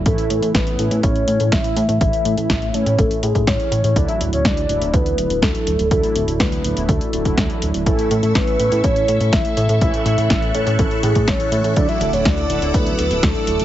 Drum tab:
HH |xxxxxxxxxxxxxxxx|xxxxxxxxxxxxxxxx|xxxxxxxxxxxxxxxx|xxxxxxxxxxxxxxxx|
SD |----o-------o---|----o-------o---|----o-------o---|----o-------o---|
BD |o---o---o---o---|o---o---o--oo---|o---o---o---o---|o---o---o--oo---|

HH |xxxxxxxxxxxxxxxx|xxxxxxxxxxxxxxxx|xxxxxxxxxxxxxxxx|
SD |----o-------o---|----o-------o---|----o-------o---|
BD |o---o---o---o---|o---o---o--oo---|o---o---o---o---|